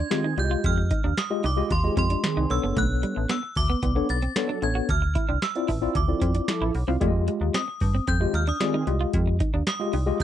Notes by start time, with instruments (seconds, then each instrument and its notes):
Already playing: synth bell G#6
0.11 analog polysynth D#3 C4 G#4, tine electric piano G#3 F4 G4 D#5, snare, closed hi-hat
0.24 clean electric guitar D#4
0.37 fm bass C2, tine electric piano G#3 F4 G4 D5, synth bell G6, muted clean electric guitar stroke, closed hi-hat
0.44 tine electric piano D#5
0.51 clean electric guitar F4
0.64 fm bass F2, synth bell F6, kick, closed hi-hat
0.78 muted clean electric guitar stroke
0.91 clean electric guitar D#4, kick, closed hi-hat
1.04 fm bass D#2, clean electric guitar D4
1.17 synth bell D#6, snare, closed hi-hat
1.30 tine electric piano G#3 F4 G4 D#5
1.43 fm bass C2, clean electric guitar D#4, synth bell D6, open hi-hat
1.57 tine electric piano G#3 F4 G4 D#5
1.70 fm bass D#2, synth bell C6, muted clean electric guitar stroke, kick, closed hi-hat
1.83 analog polysynth D#3 C4 G#4, tine electric piano G#3 F4 G4 D#5
1.97 fm bass F2, clean electric guitar C4, synth bell C6, kick, closed hi-hat
2.10 clean electric guitar D4, closed hi-hat
2.24 analog polysynth D#3 C4 G#4, snare, closed hi-hat
2.37 fm bass C2, clean electric guitar D#4
2.50 fm bass B1, tine electric piano B3 D4 A4 C#5, synth bell E6, muted clean electric guitar stroke, closed hi-hat
2.64 fm bass F#1, clean electric guitar B3
2.77 fm bass B1, clean electric guitar A3, synth bell F#6, kick, closed hi-hat
3.03 clean electric guitar G3, closed hi-hat
3.16 fm bass A1, muted clean electric guitar stroke
3.29 clean electric guitar B3, synth bell E6, snare, closed hi-hat
3.43 muted clean electric guitar stroke
3.55 fm bass D2, synth bell D6, kick, open hi-hat
3.70 clean electric guitar B3
3.83 fm bass C2, clean electric guitar B3, kick, closed hi-hat
3.95 analog polysynth F#3 D4 A4, tine electric piano B3 D4 A4 C#5, muted clean electric guitar stroke
4.09 fm bass B1, synth bell A6, closed hi-hat
4.22 clean electric guitar C4, closed hi-hat
4.36 analog polysynth F#3 D4 A4, tine electric piano B3 D4 A4 C#5, snare, closed hi-hat
4.49 clean electric guitar D4
4.62 fm bass A1, tine electric piano B3 D4 A4 C#5, synth bell G#6, muted clean electric guitar stroke, closed hi-hat
4.75 clean electric guitar F#4
4.89 fm bass D2, synth bell F6, kick, closed hi-hat
5.02 muted clean electric guitar stroke
5.15 clean electric guitar E4, kick, closed hi-hat
5.29 fm bass C2, clean electric guitar D4
5.42 synth bell E6, snare, closed hi-hat
5.55 tine electric piano C4 E4 F4 D5, closed hi-hat
5.68 fm bass A1, clean electric guitar E4, kick, open hi-hat
5.82 tine electric piano C4 E4 F4 D5
5.95 fm bass D2, synth bell D6, muted clean electric guitar stroke, kick, closed hi-hat
6.08 analog polysynth F3 E4 A4, tine electric piano C4 E4 F4 D5
6.21 fm bass F2, clean electric guitar C4, kick, closed hi-hat
6.35 clean electric guitar D4, closed hi-hat
6.48 analog polysynth F3 E4 A4, snare, closed hi-hat
6.61 fm bass A1, clean electric guitar E4
6.75 fm bass B1, muted clean electric guitar stroke, open hi-hat
6.87 fm bass C2, tine electric piano C4 E4 F4 F5, clean electric guitar C4
7.00 fm bass F2, tine electric piano G#3 F4 G4 D5, clean electric guitar A3, kick, closed hi-hat
7.08 tine electric piano D#5
7.28 clean electric guitar G#3, closed hi-hat
7.41 fm bass D#2, muted clean electric guitar stroke
7.54 clean electric guitar C4, synth bell D#6, snare, closed hi-hat
7.68 muted clean electric guitar stroke
7.80 fm bass G2, kick, open hi-hat
7.95 clean electric guitar C4
8.07 fm bass F2, clean electric guitar C4, synth bell G6, kick, closed hi-hat
8.21 analog polysynth D#3 C4 G4, tine electric piano G#3 F4 G4 D#5, muted clean electric guitar stroke
8.34 fm bass D#2, synth bell F6, closed hi-hat
8.47 clean electric guitar D4, synth bell D#6, closed hi-hat
8.60 analog polysynth D#3 C4 G#4, tine electric piano G#3 F4 G4 D5, snare, closed hi-hat
8.74 clean electric guitar D#4
8.87 fm bass C2, tine electric piano G#3 F4 G4 D#5, muted clean electric guitar stroke, closed hi-hat
9.01 clean electric guitar F4
9.13 fm bass F2, kick, closed hi-hat
9.27 muted clean electric guitar stroke
9.40 clean electric guitar D#4, kick, closed hi-hat
9.54 fm bass D#2, clean electric guitar D4
9.67 synth bell D#6, snare, closed hi-hat
9.80 tine electric piano G#3 F4 G4 D#5
9.93 fm bass C2, clean electric guitar D#4, open hi-hat
10.06 tine electric piano G#3 F4 G4 D#5
10.20 fm bass D#2, muted clean electric guitar stroke, kick, closed hi-hat